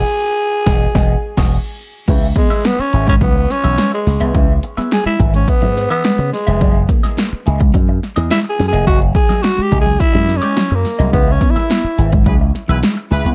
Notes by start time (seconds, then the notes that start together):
Already playing: G#4
0.66 E1 B3 F#4 G#4 D#5, kick, snare
0.95 E1 B3 F#4 G#4 D#5, kick, snare
1.37 E1 B3 F#4 G#4 D#5, kick, snare, crash
2.08 C#2 C#4 E4 G#4 B4 E5, kick, closed hi-hat, crash
2.22 muted clean electric guitar stroke
2.36 G#3 B3, muted clean electric guitar stroke, kick, closed hi-hat
2.50 E4 G#4 B4 E5, muted slap bass stroke, snare, closed hi-hat
2.64 B3, snare, closed hi-hat
2.79 C#4, muted slap bass stroke
2.93 G#1 E4 G#4 B4 E5, muted clean electric guitar stroke, closed hi-hat
3.07 G#3 C#4, kick, closed hi-hat
3.21 C#2 F#3 B3, muted clean electric guitar stroke, kick, closed hi-hat
3.35 muted clean electric guitar stroke
3.50 C#4, snare, closed hi-hat
3.63 B1 E3 E4 G#4 B4 E5, closed hi-hat
3.78 G#3, muted clean electric guitar stroke, snare, closed hi-hat
3.92 G#3, muted clean electric guitar stroke, closed hi-hat
4.07 C#2, muted clean electric guitar stroke, snare, open hi-hat
4.20 C2 B3 E4 G#4 B4 E5, closed hi-hat
4.34 C#2 C#4 E4 G#4 B4 E5, kick, closed hi-hat
4.63 muted clean electric guitar stroke, closed hi-hat
4.77 B3 E4 G#4 B4 E5, muted slap bass stroke, snare, closed hi-hat
4.91 G#4, muted clean electric guitar stroke, snare, closed hi-hat
5.05 G#3 E4, muted slap bass stroke
5.19 G#1 E4 G#4 B4 E5, muted clean electric guitar stroke, kick, closed hi-hat
5.34 G#3 C#4, muted clean electric guitar stroke, closed hi-hat
5.48 B3, muted clean electric guitar stroke, kick, closed hi-hat
5.62 G#2 F#3, muted clean electric guitar stroke
5.76 muted clean electric guitar stroke, snare, closed hi-hat
5.90 E3 B3 E4 G#4 B4 E5, closed hi-hat
6.04 G#3, snare, closed hi-hat
6.18 C#3, muted clean electric guitar stroke, closed hi-hat
6.32 G#3, muted clean electric guitar stroke, snare, open hi-hat
6.47 F1 G#3 E4 G#4 B4 E5, closed hi-hat
6.61 F#1 F#3 A#3 E4 G#4 D#5, kick, closed hi-hat
6.75 muted clean electric guitar stroke
6.89 A#3, muted clean electric guitar stroke, kick, closed hi-hat
7.03 A#3 E4 G#4 D#5, muted slap bass stroke, snare, closed hi-hat
7.17 A#3, muted clean electric guitar stroke, snare, closed hi-hat
7.33 muted slap bass stroke
7.46 C#2 A#3 E4 G#4 D#5, muted clean electric guitar stroke, closed hi-hat
7.60 G#3, muted clean electric guitar stroke, kick, closed hi-hat
7.74 F#2 F#3, muted clean electric guitar stroke, kick, closed hi-hat
7.89 muted clean electric guitar stroke
8.03 snare, closed hi-hat
8.16 E2 E3 A#3 E4 G#4 D#5, closed hi-hat
8.30 G#3 E4, muted clean electric guitar stroke, snare, closed hi-hat
8.44 muted clean electric guitar stroke, closed hi-hat
8.50 G#4
8.59 F#2, muted clean electric guitar stroke, snare, open hi-hat
8.68 G#4
8.73 F1 A#3 E4 G#4 D#5, closed hi-hat
8.86 F#1 F#3 A#3 E4 F#4 G#4 D#5, kick, closed hi-hat
9.02 closed hi-hat
9.15 G#4, muted clean electric guitar stroke, kick, closed hi-hat
9.29 F#3 A#3 E4 G#4 D#5, muted slap bass stroke, snare, closed hi-hat
9.42 F#4, snare, closed hi-hat
9.57 G#3, muted slap bass stroke
9.62 G4
9.72 C#2 A#3 E4 G#4 D#5, muted clean electric guitar stroke, kick, closed hi-hat
9.81 G#4
9.85 F#3, muted clean electric guitar stroke, closed hi-hat
10.00 E4, muted clean electric guitar stroke, muted slap bass stroke, kick, closed hi-hat
10.13 F#2 G#3, muted clean electric guitar stroke, closed hi-hat
10.29 muted clean electric guitar stroke, snare, closed hi-hat
10.37 C#4
10.42 G#3 A#3 E4 G#4 D#5, closed hi-hat
10.56 F#3, muted clean electric guitar stroke, snare, closed hi-hat
10.70 F#2, muted clean electric guitar stroke, closed hi-hat
10.75 A#3
10.85 muted clean electric guitar stroke, snare, open hi-hat
10.99 C2 F#3 A#3 E4 G#4 D#5, closed hi-hat
11.13 C#2 B3 C#4 E4 G#4 B4 E5, kick, closed hi-hat
11.27 muted clean electric guitar stroke
11.32 C#4
11.41 B3, muted clean electric guitar stroke, kick, closed hi-hat
11.51 E4
11.56 E4 G#4 B4 E5, muted slap bass stroke, snare, closed hi-hat
11.70 B3, muted clean electric guitar stroke, snare, closed hi-hat
11.84 muted slap bass stroke
11.98 G#1 E4 G#4 B4 E5, muted clean electric guitar stroke, closed hi-hat
12.12 G#3, muted clean electric guitar stroke, kick, closed hi-hat
12.26 C#2 F#3 E4 G#4 B4, muted clean electric guitar stroke, kick, closed hi-hat
12.41 muted clean electric guitar stroke
12.55 snare, closed hi-hat
12.68 B1 E3 E4 G#4 B4 E5, closed hi-hat
12.83 G#3, snare, closed hi-hat
12.97 muted clean electric guitar stroke, closed hi-hat
13.11 C#2 E4 G#4 B4 E5, muted clean electric guitar stroke, snare, open hi-hat
13.25 C2 B3, muted clean electric guitar stroke, closed hi-hat